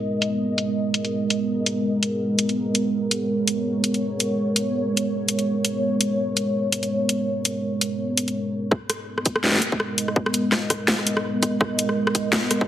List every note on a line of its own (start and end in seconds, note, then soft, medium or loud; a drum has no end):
0.00 8.68 G#3 medium
0.00 8.68 B3 medium
0.00 8.68 A#4 medium
0.00 2.89 D#5 medium
0.22 closed hi-hat medium
0.58 closed hi-hat medium
0.94 closed hi-hat medium
1.05 closed hi-hat soft
1.30 closed hi-hat medium
1.66 closed hi-hat medium
2.03 closed hi-hat medium
2.39 closed hi-hat medium
2.49 closed hi-hat soft
2.75 closed hi-hat medium
2.93 8.67 C#5 medium
3.11 closed hi-hat medium
3.48 closed hi-hat medium
3.84 closed hi-hat medium
3.94 closed hi-hat soft
4.20 closed hi-hat medium
4.56 closed hi-hat medium
4.97 closed hi-hat medium
5.29 closed hi-hat medium
5.39 closed hi-hat soft
5.65 closed hi-hat medium
6.01 closed hi-hat medium
6.37 closed hi-hat medium
6.72 closed hi-hat medium
6.83 closed hi-hat soft
7.09 closed hi-hat medium
7.45 closed hi-hat medium
7.81 closed hi-hat medium
8.17 closed hi-hat medium
8.28 closed hi-hat soft
8.71 12.68 G#3 medium
8.71 12.68 B3 medium
8.71 12.68 A#4 medium
8.71 12.68 D#5 medium
8.71 kick loud
8.71 cross-stick soft
8.90 cross-stick medium
8.90 closed hi-hat medium
9.18 cross-stick soft
9.26 kick medium
9.26 closed hi-hat medium
9.36 cross-stick medium
9.44 snare medium
9.46 snare medium
9.49 snare medium
9.52 snare medium
9.54 snare medium
9.56 snare medium
9.58 snare medium
9.60 cross-stick medium
9.60 snare loud
9.60 closed hi-hat medium
9.72 kick loud
9.80 cross-stick medium
9.98 closed hi-hat medium
10.08 cross-stick soft
10.16 kick loud
10.26 cross-stick medium
10.34 closed hi-hat medium
10.52 cross-stick soft
10.52 snare medium
10.70 kick medium
10.70 cross-stick medium
10.70 closed hi-hat medium
10.88 snare loud
10.99 cross-stick soft
11.07 closed hi-hat medium
11.17 cross-stick medium
11.43 kick medium
11.43 cross-stick medium
11.43 closed hi-hat medium
11.61 kick loud
11.61 cross-stick medium
11.79 closed hi-hat medium
11.89 cross-stick soft
12.07 cross-stick medium
12.15 kick medium
12.15 closed hi-hat medium
12.33 cross-stick soft
12.33 snare loud
12.51 cross-stick medium
12.51 closed hi-hat medium
12.61 kick loud